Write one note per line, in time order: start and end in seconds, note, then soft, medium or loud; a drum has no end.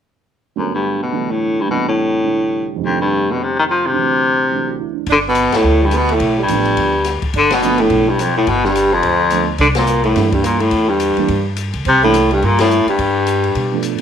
0.56 0.72 F#2 medium
0.56 1.69 G2 soft
0.56 1.09 D3 soft
0.56 1.69 F#3 soft
0.56 1.12 A3 soft
0.56 1.69 B3 soft
0.75 1.00 G2 medium
1.03 1.32 B2 medium
1.11 1.68 D3 soft
1.11 1.68 E3 soft
1.11 1.69 G3 soft
1.11 1.68 A3 soft
1.31 1.62 A2 medium
1.61 1.70 G2 medium
1.68 2.82 C2 soft
1.68 1.85 B2 medium
1.68 2.77 C3 soft
1.68 2.82 E3 soft
1.68 2.82 A3 soft
1.68 2.82 D4 medium
1.88 2.68 A2 medium
2.24 2.81 D3 soft
2.24 2.81 G3 soft
2.24 2.82 C4 soft
2.24 2.82 E4 soft
2.76 3.92 F2 medium
2.76 3.93 C3 medium
2.81 3.94 D#3 soft
2.81 3.95 G3 soft
2.85 2.99 F2 medium
2.85 3.96 A3 soft
2.85 3.97 D4 medium
3.01 3.33 G2 medium
3.31 3.45 B2 medium
3.44 3.58 C3 medium
3.59 3.64 D#3 medium
3.71 3.88 F3 medium
3.87 5.05 D2 soft
3.87 4.81 C3 medium
3.93 5.07 D3 soft
3.93 4.50 E3 soft
3.98 4.50 F#3 soft
3.98 5.11 C4 medium
4.51 5.08 E3 soft
4.51 5.08 F#3 soft
4.51 5.08 A3 soft
4.51 4.92 D4 soft
4.66 4.85 F#4 soft
4.80 5.00 E4 soft
4.94 5.13 D4 soft
5.06 5.49 G1 medium
5.06 5.17 D4 medium
5.06 kick soft
5.06 ride soft
5.12 5.19 D3 loud
5.28 5.58 B2 loud
5.28 5.56 B3 medium
5.35 hi-hat pedal medium
5.35 ride medium
5.52 5.83 A3 medium
5.52 muted upright bass stroke soft
5.52 snare medium
5.52 ride medium
5.57 5.87 A2 medium
5.64 6.18 D2 medium
5.82 5.99 G2 medium
5.82 5.95 G3 medium
5.91 6.12 B3 medium
5.91 hi-hat pedal soft
5.91 ride medium
5.97 6.16 B2 medium
6.09 6.37 A3 medium
6.09 ride soft
6.14 6.40 A2 medium
6.20 6.46 B1 medium
6.20 kick soft
6.20 ride medium
6.38 7.18 G3 medium
6.43 7.21 G2 medium
6.48 6.75 A1 medium
6.48 6.90 F3 medium
6.48 6.90 A3 soft
6.48 6.91 B3 soft
6.48 6.91 D4 medium
6.48 hi-hat pedal medium
6.48 ride medium
6.65 ride soft
6.77 7.19 D2 medium
6.77 kick soft
6.77 ride medium
7.05 snare soft
7.05 hi-hat pedal soft
7.05 ride medium
7.22 muted upright bass stroke soft
7.22 kick medium
7.22 ride soft
7.34 7.87 G1 medium
7.34 7.53 D4 medium
7.34 kick soft
7.34 ride medium
7.38 7.55 D3 loud
7.50 7.83 B2 medium
7.50 7.80 B3 medium
7.50 snare medium
7.50 ride medium
7.62 8.04 F3 medium
7.62 8.04 A3 soft
7.62 8.04 B3 medium
7.62 8.04 D4 medium
7.62 hi-hat pedal medium
7.78 8.11 A2 medium
7.78 8.10 A3 medium
7.78 ride soft
7.90 8.44 B1 medium
7.90 kick soft
7.90 ride soft
8.08 8.24 G2 medium
8.08 8.22 G3 medium
8.19 8.37 F2 medium
8.19 8.36 F3 medium
8.19 hi-hat pedal medium
8.19 ride medium
8.37 8.50 A2 medium
8.37 8.50 A3 medium
8.47 9.00 G1 medium
8.47 8.67 B2 medium
8.47 8.66 B3 medium
8.47 kick soft
8.47 ride medium
8.64 8.95 G2 medium
8.64 8.94 G3 medium
8.64 snare soft
8.75 hi-hat pedal medium
8.75 ride medium
8.92 9.49 F2 medium
8.92 9.48 F3 medium
9.03 9.57 D2 medium
9.03 kick soft
9.03 ride medium
9.30 9.46 F3 soft
9.30 9.46 A3 soft
9.30 9.46 B3 soft
9.30 9.47 D4 medium
9.30 hi-hat pedal soft
9.30 ride medium
9.58 10.12 C2 medium
9.58 9.68 D3 medium
9.58 9.67 D4 medium
9.58 kick soft
9.58 ride soft
9.75 10.03 A#2 medium
9.75 10.02 A#3 medium
9.75 snare medium
9.75 ride medium
9.87 hi-hat pedal medium
10.03 10.36 A2 medium
10.03 10.31 A3 medium
10.03 ride soft
10.15 10.69 G2 medium
10.15 10.57 E3 medium
10.15 10.57 G3 soft
10.15 10.58 A#3 medium
10.15 10.58 D4 medium
10.15 kick soft
10.15 snare soft
10.15 ride medium
10.30 10.41 G3 medium
10.30 kick soft
10.30 ride soft
10.34 10.45 G2 medium
10.42 10.60 A#3 medium
10.42 hi-hat pedal soft
10.42 ride medium
10.46 10.63 A#2 medium
10.59 10.91 A2 medium
10.59 10.90 A3 medium
10.59 ride soft
10.71 11.14 E2 medium
10.71 kick soft
10.71 ride medium
10.88 11.46 G2 medium
10.88 11.46 G3 medium
11.00 hi-hat pedal soft
11.00 ride medium
11.17 11.28 E3 medium
11.17 11.28 G3 medium
11.17 11.28 A#3 medium
11.17 11.28 D4 medium
11.17 muted upright bass stroke soft
11.17 ride soft
11.28 11.70 G2 medium
11.28 kick soft
11.28 ride soft
11.57 hi-hat pedal soft
11.57 ride medium
11.74 11.84 C#2 medium
11.74 ride soft
11.85 12.38 C2 medium
11.85 12.02 C3 loud
11.85 12.01 C4 medium
11.85 kick soft
11.85 ride medium
12.03 12.29 A2 loud
12.03 12.13 E3 medium
12.03 12.13 G3 medium
12.03 12.28 A3 medium
12.03 12.13 A#3 medium
12.03 12.13 D4 medium
12.14 hi-hat pedal medium
12.14 ride medium
12.31 12.47 G2 medium
12.31 12.45 G3 medium
12.31 ride soft
12.42 12.84 G2 medium
12.42 12.60 A#2 medium
12.42 12.59 A#3 medium
12.42 kick soft
12.42 ride soft
12.59 12.85 A2 medium
12.59 12.85 A3 medium
12.59 snare medium
12.59 ride medium
12.71 hi-hat pedal soft
12.86 13.80 G2 medium
12.86 13.79 G3 medium
12.86 muted upright bass stroke soft
12.86 ride soft
12.99 13.52 G2 medium
12.99 kick soft
12.99 ride medium
13.27 hi-hat pedal medium
13.27 ride medium
13.44 ride soft
13.55 13.96 B2 medium
13.55 kick soft
13.55 ride medium
13.72 14.02 F3 medium
13.72 14.02 A3 medium
13.72 14.02 B3 medium
13.72 14.02 D4 medium
13.83 hi-hat pedal medium
13.83 ride medium
13.98 ride soft